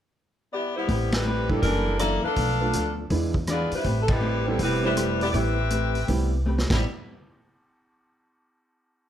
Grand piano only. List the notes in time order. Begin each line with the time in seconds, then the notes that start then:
1.49 G3 A#3 D4 E4
2.61 A3 B3 D4 F4
3.11 G#3 B3 D4 E4
4.47 G3 B3 C4 E4
4.84 G3 A3 C4 E4
5.34 G3 B3 C4 E4
6.09 G3 B3 C4 E4
6.70 G3 B3 C4 E4